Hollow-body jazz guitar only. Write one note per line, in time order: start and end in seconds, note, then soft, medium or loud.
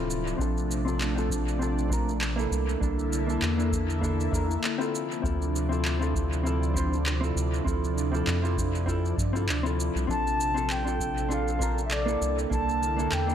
0.00 0.35 C4 medium
0.00 0.36 E4 medium
0.00 0.37 F4 medium
0.00 0.37 A4 medium
0.38 0.81 C4 medium
0.38 0.82 D4 medium
0.38 0.83 F4 medium
0.38 0.83 A4 medium
0.85 1.12 C4 medium
0.85 1.13 D4 medium
0.85 1.13 F4 medium
0.85 1.14 A4 medium
1.15 1.56 C4 medium
1.15 1.57 D4 medium
1.15 1.58 F4 medium
1.15 1.58 A4 medium
1.59 1.87 C4 medium
1.59 1.87 D4 medium
1.59 1.88 F4 medium
1.59 1.89 A4 medium
1.89 2.10 C4 medium
1.89 2.11 D4 medium
1.89 2.11 F4 medium
1.89 2.12 A#4 medium
2.36 2.78 A#3 medium
2.36 2.78 D4 medium
2.36 2.79 E4 medium
2.36 2.80 A4 medium
2.80 3.24 A#3 medium
2.80 3.24 D4 medium
2.80 3.25 E4 medium
2.80 3.26 A4 medium
3.27 3.54 A#3 medium
3.27 3.55 D4 medium
3.27 3.55 E4 medium
3.27 3.56 A4 medium
3.57 3.99 A#3 medium
3.57 4.00 D4 medium
3.57 4.00 E4 medium
3.57 4.01 A4 medium
4.01 4.29 A#3 medium
4.01 4.30 D4 medium
4.01 4.30 E4 medium
4.01 4.31 A4 loud
4.31 4.52 A#3 medium
4.31 4.53 D4 medium
4.31 4.54 E4 medium
4.31 4.54 A#4 medium
4.78 5.20 C4 medium
4.78 5.21 E4 medium
4.78 5.21 F4 medium
4.78 5.22 A4 medium
5.22 5.66 C4 medium
5.22 5.67 E4 medium
5.22 5.67 F4 medium
5.22 5.68 A4 medium
5.69 5.96 C4 medium
5.69 5.97 E4 medium
5.69 5.98 F4 medium
5.69 5.98 A4 medium
5.99 6.41 C4 medium
5.99 6.42 E4 medium
5.99 6.42 F4 medium
5.99 6.43 A4 medium
6.43 6.71 C4 medium
6.43 6.72 E4 medium
6.43 6.73 F4 medium
6.43 6.73 A4 loud
6.74 6.95 C4 medium
6.74 6.96 E4 medium
6.74 6.96 F4 medium
6.74 6.97 C5 medium
7.21 7.62 C4 medium
7.21 7.63 E4 medium
7.21 7.64 F4 medium
7.21 7.64 A4 medium
7.64 8.09 C4 medium
7.64 8.09 E4 medium
7.64 8.10 F4 medium
7.64 8.10 A4 medium
8.12 8.39 C4 medium
8.12 8.40 E4 medium
8.12 8.40 F4 medium
8.12 8.41 A4 medium
8.42 8.84 C4 medium
8.42 8.84 E4 medium
8.42 8.85 F4 medium
8.42 8.86 A4 medium
8.86 9.14 C4 medium
8.86 9.15 E4 medium
8.86 9.15 F4 medium
8.86 9.16 A4 loud
9.33 9.45 C4 medium
9.33 9.45 E4 medium
9.33 9.46 F4 medium
9.33 9.46 A4 medium
9.63 10.05 C4 medium
9.63 10.05 E4 medium
9.63 10.06 F4 medium
9.63 10.07 A4 medium
10.07 10.51 C4 medium
10.07 10.52 D4 medium
10.07 10.52 F4 medium
10.07 10.53 A4 medium
10.54 10.81 C4 medium
10.54 10.82 D4 medium
10.54 10.83 F4 medium
10.54 10.83 A4 medium
10.84 11.26 C4 medium
10.84 11.27 D4 medium
10.84 11.27 F4 medium
10.84 11.28 A4 medium
11.29 11.56 C4 medium
11.29 11.57 D4 medium
11.29 11.58 F4 medium
11.29 11.58 A4 loud
11.59 11.80 C4 medium
11.59 11.80 D4 medium
11.59 11.81 F4 medium
11.59 11.82 A#4 medium
12.06 12.47 A#3 medium
12.06 12.48 D4 medium
12.06 12.49 E4 medium
12.06 12.49 A4 medium
12.50 12.94 A#3 medium
12.50 12.94 D4 medium
12.50 12.95 E4 medium
12.50 12.96 A4 medium
12.96 13.24 A#3 medium
12.96 13.24 D4 medium
12.96 13.25 E4 medium
12.96 13.26 A4 medium
13.27 13.35 A#3 medium
13.27 13.35 D4 medium
13.27 13.35 E4 medium
13.27 13.35 A4 medium